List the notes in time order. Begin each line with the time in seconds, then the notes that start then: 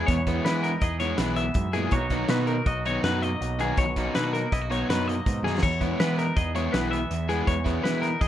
Already playing: E3 G#3 B3 E4
0.07 E2 C#5, kick, closed hi-hat
0.27 E3 G#3 B3 E4, kick, closed hi-hat
0.45 E3 G#3 B3 E4 B4, snare, closed hi-hat
0.63 D#4 A#4, snare, closed hi-hat
0.81 E2 G#4 D#5, kick, closed hi-hat
1.00 E3 G#3 B3 E4 C#5, snare, closed hi-hat
1.17 B1 E3 G#3 B3 E4 B4, snare, closed hi-hat
1.36 B3 E5, snare, closed hi-hat
1.54 F#2 G#2, kick, closed hi-hat
1.73 A#2 E3 G#3 B3 E4 G#4, snare, closed hi-hat
1.91 B1 B2 F#3 A#3 D#4 F#4 C#5, kick, closed hi-hat
2.10 D#3 F#3 A#3 B3 D#4, kick, snare, closed hi-hat
2.28 B2 D#3 F#3 B3 D#4 F#4 B4, snare, closed hi-hat
2.47 D#4 A#4, closed hi-hat
2.66 B1 F#4 D#5, kick, closed hi-hat
2.85 D#3 F#3 B3 D#4 C#5, closed hi-hat
3.03 F#2 D#3 F#3 B3 D#4 B4, snare, closed hi-hat
3.22 A#3 D#5, closed hi-hat
3.41 B1 B2, closed hi-hat
3.59 D#3 F#3 A#3 B3 D#4 G#4, closed hi-hat
3.77 B1 B2 C#5, kick, closed hi-hat
3.96 D#3 F#3 A#3 B3 D#4, kick, closed hi-hat
4.15 B2 D#3 F#3 B3 D#4 E4 B4, snare, closed hi-hat
4.24 F#4
4.33 D#4 A#4, snare, closed hi-hat
4.52 B1 E4 D#5, kick, closed hi-hat
4.62 F#4
4.70 D#3 F#3 B3 D#4 C#5, closed hi-hat
4.89 F#2 D#3 F#3 B3 D#4 B4, snare, closed hi-hat
5.08 A#3 D#5, closed hi-hat
5.26 G#2 B2, kick, snare, closed hi-hat
5.43 F#2 D#3 F#3 A#3 B3 D#4 G#4, snare
5.58 snare
5.62 E2 C#5, kick, crash
5.80 E3 G#3 B3 E4, kick, closed hi-hat
5.99 E3 G#3 B3 E4 B4, snare, closed hi-hat
6.18 D#4 A#4, snare, closed hi-hat
6.36 E2 G#4 D#5, kick, closed hi-hat
6.55 E3 G#3 B3 E4 C#5, closed hi-hat
6.72 B1 E3 G#3 B3 E4 B4, snare, closed hi-hat
6.91 B3 E5, closed hi-hat
7.11 E2, snare, closed hi-hat
7.29 E3 G#3 B3 E4 G#4, snare, closed hi-hat
7.47 E2 C#5, kick, closed hi-hat
7.65 E3 G#3 B3 E4, kick, snare, closed hi-hat
7.83 E3 G#3 B3 E4 B4, snare, closed hi-hat
8.02 D#4 A#4, snare, closed hi-hat
8.21 E2 G#4 D#5, kick, closed hi-hat